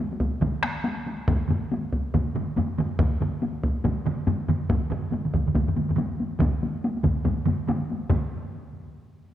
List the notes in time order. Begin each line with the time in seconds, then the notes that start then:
0.12 taiko high
0.20 taiko, taiko high
0.34 taiko high
0.41 taiko, taiko low-mid, taiko mid, taiko high
0.55 taiko high
0.63 taiko rim, taiko high
0.76 taiko high
0.84 taiko high
0.98 taiko high
1.06 taiko high
1.20 taiko high
1.28 taiko, taiko low-mid, taiko mid, taiko high
1.42 taiko high
1.49 taiko low-mid, taiko mid, taiko high
1.63 taiko high
1.72 taiko high
1.93 taiko, taiko high
2.06 taiko high
2.14 taiko, taiko low-mid, taiko mid, taiko high
2.27 taiko high
2.35 taiko low-mid, taiko mid, taiko high
2.49 taiko high
2.56 taiko low-mid, taiko mid, taiko high
2.70 taiko high
2.78 taiko low-mid, taiko mid, taiko high
2.91 taiko high
2.99 taiko, taiko low-mid, taiko mid, taiko high
3.13 taiko high
3.21 taiko low-mid, taiko mid, taiko high
3.34 taiko high
3.42 taiko high
3.64 taiko, taiko high
3.76 taiko high
3.84 taiko, taiko low-mid, taiko mid, taiko high
3.97 taiko high
4.06 taiko low-mid, taiko mid, taiko high
4.19 taiko high
4.27 taiko low-mid, taiko mid, taiko high
4.40 taiko high
4.48 taiko low-mid, taiko mid, taiko high
4.69 taiko, taiko low-mid, taiko mid, taiko high
4.83 taiko high
4.90 taiko low-mid, taiko mid, taiko high
5.04 taiko high
5.12 taiko low-mid, taiko mid, taiko high
5.25 taiko low-mid, taiko mid
5.34 taiko, taiko low-mid, taiko mid, taiko high
5.46 taiko low-mid, taiko mid, taiko high
5.55 taiko, taiko low-mid, taiko mid, taiko high
5.68 taiko low-mid, taiko mid
5.76 taiko low-mid, taiko mid, taiko high
5.89 taiko low-mid, taiko mid, taiko high
5.97 taiko low-mid, taiko mid, taiko high
6.12 taiko high
6.20 taiko high
6.33 taiko high
6.39 taiko, taiko low-mid, taiko mid, taiko high
6.54 taiko high
6.63 taiko high
6.75 taiko high
6.84 taiko high
6.97 taiko high
7.03 taiko, taiko low-mid, taiko mid, taiko high
7.17 taiko high
7.25 taiko, taiko low-mid, taiko mid, taiko high
7.39 taiko high
7.46 taiko low-mid, taiko mid, taiko high
7.60 taiko high
7.67 taiko low-mid, taiko mid, taiko high
7.82 taiko high
7.90 taiko high
8.03 taiko high
8.10 taiko, taiko low-mid, taiko mid, taiko high